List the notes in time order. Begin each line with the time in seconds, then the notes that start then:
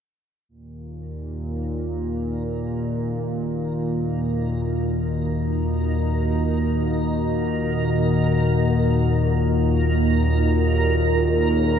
0.49 D#2 A#2 A#3 A#4
1.36 D#4
2.66 F#4
3.69 D#5
10.61 G#4
10.90 C#5